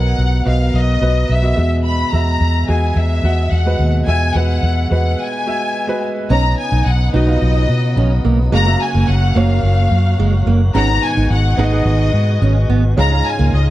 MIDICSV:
0, 0, Header, 1, 6, 480
1, 0, Start_track
1, 0, Tempo, 556070
1, 1600, Time_signature, 4, 2, 24, 8
1, 11827, End_track
2, 0, Start_track
2, 0, Title_t, "Violin section"
2, 0, Program_c, 0, 48
2, 0, Note_on_c, 0, 78, 76
2, 370, Note_off_c, 0, 78, 0
2, 409, Note_on_c, 0, 77, 72
2, 641, Note_on_c, 0, 75, 79
2, 644, Note_off_c, 0, 77, 0
2, 1120, Note_off_c, 0, 75, 0
2, 1126, Note_on_c, 0, 76, 76
2, 1483, Note_off_c, 0, 76, 0
2, 1598, Note_on_c, 0, 83, 90
2, 1822, Note_off_c, 0, 83, 0
2, 1839, Note_on_c, 0, 82, 88
2, 2320, Note_off_c, 0, 82, 0
2, 2326, Note_on_c, 0, 80, 75
2, 2546, Note_off_c, 0, 80, 0
2, 2561, Note_on_c, 0, 76, 87
2, 3040, Note_on_c, 0, 78, 77
2, 3041, Note_off_c, 0, 76, 0
2, 3401, Note_off_c, 0, 78, 0
2, 3522, Note_on_c, 0, 80, 88
2, 3745, Note_off_c, 0, 80, 0
2, 3763, Note_on_c, 0, 78, 80
2, 4233, Note_off_c, 0, 78, 0
2, 4243, Note_on_c, 0, 78, 70
2, 4466, Note_off_c, 0, 78, 0
2, 4486, Note_on_c, 0, 80, 77
2, 5204, Note_off_c, 0, 80, 0
2, 5454, Note_on_c, 0, 82, 98
2, 5672, Note_off_c, 0, 82, 0
2, 5689, Note_on_c, 0, 80, 89
2, 5909, Note_off_c, 0, 80, 0
2, 5928, Note_on_c, 0, 78, 92
2, 6165, Note_off_c, 0, 78, 0
2, 6169, Note_on_c, 0, 75, 81
2, 7091, Note_off_c, 0, 75, 0
2, 7370, Note_on_c, 0, 82, 110
2, 7589, Note_off_c, 0, 82, 0
2, 7610, Note_on_c, 0, 80, 93
2, 7846, Note_off_c, 0, 80, 0
2, 7853, Note_on_c, 0, 78, 93
2, 8087, Note_off_c, 0, 78, 0
2, 8090, Note_on_c, 0, 77, 83
2, 9045, Note_off_c, 0, 77, 0
2, 9281, Note_on_c, 0, 82, 107
2, 9504, Note_off_c, 0, 82, 0
2, 9530, Note_on_c, 0, 80, 98
2, 9765, Note_off_c, 0, 80, 0
2, 9772, Note_on_c, 0, 78, 94
2, 9990, Note_off_c, 0, 78, 0
2, 10011, Note_on_c, 0, 75, 85
2, 10965, Note_off_c, 0, 75, 0
2, 11212, Note_on_c, 0, 82, 109
2, 11430, Note_off_c, 0, 82, 0
2, 11459, Note_on_c, 0, 80, 96
2, 11689, Note_off_c, 0, 80, 0
2, 11695, Note_on_c, 0, 75, 87
2, 11800, Note_off_c, 0, 75, 0
2, 11827, End_track
3, 0, Start_track
3, 0, Title_t, "Upright piano"
3, 0, Program_c, 1, 0
3, 0, Control_c, 1, 64, 127
3, 0, Note_on_c, 1, 47, 46
3, 0, Note_on_c, 1, 54, 46
3, 0, Note_on_c, 1, 59, 57
3, 0, Note_on_c, 1, 66, 55
3, 0, Note_on_c, 1, 70, 64
3, 0, Note_on_c, 1, 75, 64
3, 355, Note_off_c, 1, 59, 0
3, 358, Note_off_c, 1, 66, 0
3, 362, Note_off_c, 1, 70, 0
3, 365, Note_off_c, 1, 47, 0
3, 365, Note_off_c, 1, 54, 0
3, 390, Note_on_c, 1, 59, 60
3, 397, Note_on_c, 1, 66, 56
3, 404, Note_off_c, 1, 75, 0
3, 404, Note_on_c, 1, 75, 63
3, 835, Note_off_c, 1, 59, 0
3, 838, Note_off_c, 1, 66, 0
3, 842, Note_off_c, 1, 75, 0
3, 874, Note_on_c, 1, 59, 56
3, 878, Note_on_c, 1, 66, 48
3, 886, Note_on_c, 1, 71, 61
3, 1207, Note_off_c, 1, 59, 0
3, 1209, Note_off_c, 1, 66, 0
3, 1213, Note_off_c, 1, 71, 0
3, 1227, Note_on_c, 1, 59, 57
3, 1232, Note_on_c, 1, 66, 57
3, 1241, Note_on_c, 1, 75, 65
3, 1342, Note_off_c, 1, 66, 0
3, 1347, Note_on_c, 1, 56, 58
3, 1353, Note_off_c, 1, 59, 0
3, 1353, Note_on_c, 1, 47, 48
3, 1355, Note_on_c, 1, 66, 57
3, 1360, Note_off_c, 1, 75, 0
3, 1363, Note_on_c, 1, 76, 65
3, 1371, Control_c, 1, 64, 0
3, 1495, Control_c, 1, 64, 127
3, 1794, Note_off_c, 1, 56, 0
3, 1798, Note_off_c, 1, 66, 0
3, 1802, Note_off_c, 1, 76, 0
3, 1830, Note_on_c, 1, 56, 56
3, 1837, Note_on_c, 1, 66, 51
3, 1846, Note_on_c, 1, 76, 67
3, 2043, Note_off_c, 1, 47, 0
3, 2276, Note_off_c, 1, 56, 0
3, 2279, Note_off_c, 1, 66, 0
3, 2284, Note_off_c, 1, 76, 0
3, 2307, Note_on_c, 1, 56, 62
3, 2316, Note_on_c, 1, 66, 55
3, 2326, Note_on_c, 1, 68, 67
3, 2754, Note_off_c, 1, 56, 0
3, 2759, Note_off_c, 1, 66, 0
3, 2764, Note_off_c, 1, 68, 0
3, 2790, Note_on_c, 1, 56, 52
3, 2797, Note_on_c, 1, 66, 51
3, 2804, Note_on_c, 1, 78, 62
3, 3126, Note_off_c, 1, 56, 0
3, 3129, Note_off_c, 1, 66, 0
3, 3133, Note_off_c, 1, 78, 0
3, 3154, Note_on_c, 1, 56, 64
3, 3159, Note_on_c, 1, 66, 56
3, 3167, Note_on_c, 1, 71, 65
3, 3282, Note_on_c, 1, 47, 51
3, 3488, Note_off_c, 1, 56, 0
3, 3491, Note_off_c, 1, 66, 0
3, 3494, Note_off_c, 1, 71, 0
3, 3509, Note_on_c, 1, 56, 63
3, 3514, Note_on_c, 1, 66, 54
3, 3524, Note_on_c, 1, 76, 64
3, 3735, Note_off_c, 1, 56, 0
3, 3738, Note_off_c, 1, 66, 0
3, 3743, Note_off_c, 1, 76, 0
3, 3750, Note_on_c, 1, 56, 60
3, 3757, Note_on_c, 1, 66, 54
3, 3765, Note_on_c, 1, 71, 64
3, 3967, Note_off_c, 1, 47, 0
3, 4196, Note_off_c, 1, 56, 0
3, 4200, Note_off_c, 1, 66, 0
3, 4204, Note_off_c, 1, 71, 0
3, 4228, Note_on_c, 1, 56, 64
3, 4236, Note_on_c, 1, 66, 59
3, 4244, Note_on_c, 1, 71, 66
3, 4676, Note_off_c, 1, 56, 0
3, 4679, Note_off_c, 1, 66, 0
3, 4683, Note_off_c, 1, 71, 0
3, 4713, Note_on_c, 1, 56, 59
3, 4720, Note_on_c, 1, 66, 52
3, 4726, Note_on_c, 1, 76, 66
3, 5048, Note_off_c, 1, 56, 0
3, 5051, Note_off_c, 1, 66, 0
3, 5054, Note_off_c, 1, 76, 0
3, 5069, Note_on_c, 1, 56, 75
3, 5078, Note_on_c, 1, 66, 65
3, 5086, Note_on_c, 1, 71, 85
3, 5406, Note_off_c, 1, 56, 0
3, 5410, Note_off_c, 1, 66, 0
3, 5414, Note_off_c, 1, 71, 0
3, 5433, Note_on_c, 1, 59, 64
3, 5441, Note_on_c, 1, 63, 62
3, 5448, Note_on_c, 1, 73, 69
3, 5454, Control_c, 1, 64, 0
3, 5584, Control_c, 1, 64, 127
3, 6098, Note_off_c, 1, 59, 0
3, 6102, Note_off_c, 1, 63, 0
3, 6106, Note_off_c, 1, 73, 0
3, 6153, Note_on_c, 1, 59, 68
3, 6161, Note_on_c, 1, 63, 64
3, 6169, Note_on_c, 1, 66, 73
3, 6260, Note_off_c, 1, 59, 0
3, 6266, Note_off_c, 1, 63, 0
3, 6273, Note_on_c, 1, 59, 70
3, 6276, Note_off_c, 1, 66, 0
3, 6279, Note_on_c, 1, 63, 67
3, 6288, Note_on_c, 1, 65, 75
3, 7158, Note_off_c, 1, 59, 0
3, 7161, Note_off_c, 1, 63, 0
3, 7166, Note_off_c, 1, 65, 0
3, 7355, Note_on_c, 1, 58, 69
3, 7362, Note_on_c, 1, 49, 59
3, 7362, Note_on_c, 1, 66, 63
3, 7369, Note_on_c, 1, 77, 73
3, 7374, Control_c, 1, 64, 0
3, 7461, Note_off_c, 1, 58, 0
3, 7468, Note_off_c, 1, 66, 0
3, 7474, Note_on_c, 1, 58, 65
3, 7475, Note_off_c, 1, 77, 0
3, 7481, Note_on_c, 1, 66, 63
3, 7487, Note_on_c, 1, 76, 64
3, 7541, Note_off_c, 1, 76, 0
3, 7544, Note_on_c, 1, 77, 73
3, 7545, Control_c, 1, 64, 127
3, 8028, Note_off_c, 1, 58, 0
3, 8031, Note_off_c, 1, 66, 0
3, 8047, Note_off_c, 1, 49, 0
3, 8063, Note_off_c, 1, 77, 0
3, 8073, Note_on_c, 1, 58, 66
3, 8082, Note_on_c, 1, 66, 60
3, 8090, Note_on_c, 1, 73, 78
3, 8958, Note_off_c, 1, 58, 0
3, 8962, Note_off_c, 1, 66, 0
3, 8966, Note_off_c, 1, 73, 0
3, 9275, Note_on_c, 1, 59, 70
3, 9280, Note_on_c, 1, 51, 61
3, 9281, Note_on_c, 1, 44, 62
3, 9282, Note_on_c, 1, 68, 62
3, 9288, Note_on_c, 1, 78, 80
3, 9291, Control_c, 1, 64, 0
3, 9437, Control_c, 1, 64, 127
3, 9938, Note_off_c, 1, 59, 0
3, 9942, Note_off_c, 1, 68, 0
3, 9945, Note_off_c, 1, 78, 0
3, 9966, Note_off_c, 1, 44, 0
3, 9966, Note_off_c, 1, 51, 0
3, 9989, Note_on_c, 1, 59, 72
3, 9997, Note_on_c, 1, 68, 67
3, 10004, Note_on_c, 1, 78, 80
3, 10096, Note_off_c, 1, 59, 0
3, 10101, Note_off_c, 1, 68, 0
3, 10109, Note_on_c, 1, 59, 68
3, 10110, Note_off_c, 1, 78, 0
3, 10114, Note_on_c, 1, 68, 69
3, 10123, Note_on_c, 1, 78, 82
3, 10995, Note_off_c, 1, 59, 0
3, 10998, Note_off_c, 1, 68, 0
3, 11002, Note_off_c, 1, 78, 0
3, 11194, Note_on_c, 1, 61, 77
3, 11201, Note_on_c, 1, 44, 62
3, 11201, Note_on_c, 1, 68, 66
3, 11208, Note_on_c, 1, 77, 80
3, 11213, Control_c, 1, 64, 0
3, 11298, Note_off_c, 1, 61, 0
3, 11306, Note_off_c, 1, 68, 0
3, 11311, Note_on_c, 1, 61, 71
3, 11312, Note_off_c, 1, 77, 0
3, 11319, Note_on_c, 1, 68, 67
3, 11325, Note_on_c, 1, 77, 82
3, 11344, Control_c, 1, 64, 127
3, 11827, Note_off_c, 1, 44, 0
3, 11827, Note_off_c, 1, 61, 0
3, 11827, Note_off_c, 1, 68, 0
3, 11827, Note_off_c, 1, 77, 0
3, 11827, End_track
4, 0, Start_track
4, 0, Title_t, "Steel-string acoustic guitar"
4, 0, Program_c, 2, 25
4, 5439, Note_on_c, 2, 61, 89
4, 5554, Note_off_c, 2, 61, 0
4, 5802, Note_on_c, 2, 63, 63
4, 5916, Note_off_c, 2, 63, 0
4, 6160, Note_on_c, 2, 63, 67
4, 6612, Note_off_c, 2, 63, 0
4, 6881, Note_on_c, 2, 61, 83
4, 6995, Note_off_c, 2, 61, 0
4, 7119, Note_on_c, 2, 58, 71
4, 7234, Note_off_c, 2, 58, 0
4, 7358, Note_on_c, 2, 56, 83
4, 7474, Note_off_c, 2, 56, 0
4, 7722, Note_on_c, 2, 58, 68
4, 7836, Note_off_c, 2, 58, 0
4, 8082, Note_on_c, 2, 58, 70
4, 8533, Note_off_c, 2, 58, 0
4, 8801, Note_on_c, 2, 56, 76
4, 8915, Note_off_c, 2, 56, 0
4, 9038, Note_on_c, 2, 58, 79
4, 9153, Note_off_c, 2, 58, 0
4, 9278, Note_on_c, 2, 61, 93
4, 9394, Note_off_c, 2, 61, 0
4, 9641, Note_on_c, 2, 63, 67
4, 9755, Note_off_c, 2, 63, 0
4, 10002, Note_on_c, 2, 63, 77
4, 10452, Note_off_c, 2, 63, 0
4, 10721, Note_on_c, 2, 61, 80
4, 10835, Note_off_c, 2, 61, 0
4, 10959, Note_on_c, 2, 59, 80
4, 11073, Note_off_c, 2, 59, 0
4, 11200, Note_on_c, 2, 56, 92
4, 11314, Note_off_c, 2, 56, 0
4, 11560, Note_on_c, 2, 58, 72
4, 11674, Note_off_c, 2, 58, 0
4, 11827, End_track
5, 0, Start_track
5, 0, Title_t, "Tonewheel organ"
5, 0, Program_c, 3, 16
5, 5450, Note_on_c, 3, 49, 61
5, 5450, Note_on_c, 3, 59, 55
5, 5451, Note_on_c, 3, 63, 65
5, 7346, Note_off_c, 3, 49, 0
5, 7347, Note_off_c, 3, 59, 0
5, 7347, Note_off_c, 3, 63, 0
5, 7359, Note_on_c, 3, 54, 59
5, 7359, Note_on_c, 3, 58, 55
5, 7361, Note_on_c, 3, 66, 67
5, 9260, Note_off_c, 3, 54, 0
5, 9261, Note_off_c, 3, 58, 0
5, 9274, Note_on_c, 3, 56, 59
5, 9276, Note_on_c, 3, 47, 63
5, 11165, Note_off_c, 3, 66, 0
5, 11178, Note_off_c, 3, 56, 0
5, 11179, Note_off_c, 3, 47, 0
5, 11197, Note_on_c, 3, 65, 75
5, 11198, Note_on_c, 3, 49, 66
5, 11200, Note_on_c, 3, 56, 63
5, 11827, Note_off_c, 3, 49, 0
5, 11827, Note_off_c, 3, 56, 0
5, 11827, Note_off_c, 3, 65, 0
5, 11827, End_track
6, 0, Start_track
6, 0, Title_t, "Fingered electric bass"
6, 0, Program_c, 4, 33
6, 0, Note_on_c, 4, 35, 78
6, 117, Note_off_c, 4, 35, 0
6, 158, Note_on_c, 4, 35, 78
6, 355, Note_off_c, 4, 35, 0
6, 398, Note_on_c, 4, 35, 75
6, 595, Note_off_c, 4, 35, 0
6, 638, Note_on_c, 4, 35, 85
6, 835, Note_off_c, 4, 35, 0
6, 875, Note_on_c, 4, 35, 74
6, 1074, Note_off_c, 4, 35, 0
6, 1117, Note_on_c, 4, 35, 78
6, 1315, Note_off_c, 4, 35, 0
6, 1359, Note_on_c, 4, 40, 81
6, 1753, Note_off_c, 4, 40, 0
6, 1838, Note_on_c, 4, 40, 73
6, 2036, Note_off_c, 4, 40, 0
6, 2076, Note_on_c, 4, 40, 89
6, 2275, Note_off_c, 4, 40, 0
6, 2318, Note_on_c, 4, 40, 76
6, 2516, Note_off_c, 4, 40, 0
6, 2554, Note_on_c, 4, 40, 83
6, 2753, Note_off_c, 4, 40, 0
6, 2792, Note_on_c, 4, 40, 84
6, 2993, Note_off_c, 4, 40, 0
6, 3034, Note_on_c, 4, 40, 84
6, 3234, Note_off_c, 4, 40, 0
6, 3274, Note_on_c, 4, 39, 69
6, 3474, Note_off_c, 4, 39, 0
6, 3516, Note_on_c, 4, 40, 76
6, 3715, Note_off_c, 4, 40, 0
6, 3756, Note_on_c, 4, 40, 77
6, 3955, Note_off_c, 4, 40, 0
6, 3994, Note_on_c, 4, 40, 79
6, 4194, Note_off_c, 4, 40, 0
6, 4237, Note_on_c, 4, 40, 82
6, 4436, Note_off_c, 4, 40, 0
6, 5439, Note_on_c, 4, 35, 95
6, 5637, Note_off_c, 4, 35, 0
6, 5799, Note_on_c, 4, 35, 90
6, 5899, Note_off_c, 4, 35, 0
6, 5922, Note_on_c, 4, 35, 94
6, 6119, Note_off_c, 4, 35, 0
6, 6163, Note_on_c, 4, 35, 90
6, 6360, Note_off_c, 4, 35, 0
6, 6403, Note_on_c, 4, 35, 94
6, 6599, Note_off_c, 4, 35, 0
6, 6639, Note_on_c, 4, 47, 85
6, 6875, Note_on_c, 4, 35, 92
6, 6888, Note_off_c, 4, 47, 0
6, 7074, Note_off_c, 4, 35, 0
6, 7118, Note_on_c, 4, 35, 77
6, 7316, Note_off_c, 4, 35, 0
6, 7354, Note_on_c, 4, 30, 93
6, 7554, Note_off_c, 4, 30, 0
6, 7721, Note_on_c, 4, 30, 94
6, 7820, Note_off_c, 4, 30, 0
6, 7839, Note_on_c, 4, 30, 95
6, 8037, Note_off_c, 4, 30, 0
6, 8074, Note_on_c, 4, 30, 84
6, 8274, Note_off_c, 4, 30, 0
6, 8313, Note_on_c, 4, 30, 110
6, 8513, Note_off_c, 4, 30, 0
6, 8553, Note_on_c, 4, 42, 94
6, 8753, Note_off_c, 4, 42, 0
6, 8794, Note_on_c, 4, 30, 100
6, 8994, Note_off_c, 4, 30, 0
6, 9031, Note_on_c, 4, 30, 96
6, 9232, Note_off_c, 4, 30, 0
6, 9275, Note_on_c, 4, 32, 95
6, 9474, Note_off_c, 4, 32, 0
6, 9641, Note_on_c, 4, 32, 105
6, 9739, Note_off_c, 4, 32, 0
6, 9758, Note_on_c, 4, 32, 102
6, 9956, Note_off_c, 4, 32, 0
6, 9996, Note_on_c, 4, 32, 87
6, 10195, Note_off_c, 4, 32, 0
6, 10232, Note_on_c, 4, 32, 113
6, 10432, Note_off_c, 4, 32, 0
6, 10473, Note_on_c, 4, 44, 97
6, 10673, Note_off_c, 4, 44, 0
6, 10717, Note_on_c, 4, 32, 107
6, 10915, Note_off_c, 4, 32, 0
6, 10957, Note_on_c, 4, 32, 93
6, 11155, Note_off_c, 4, 32, 0
6, 11201, Note_on_c, 4, 37, 92
6, 11398, Note_off_c, 4, 37, 0
6, 11561, Note_on_c, 4, 37, 99
6, 11659, Note_off_c, 4, 37, 0
6, 11679, Note_on_c, 4, 37, 102
6, 11827, Note_off_c, 4, 37, 0
6, 11827, End_track
0, 0, End_of_file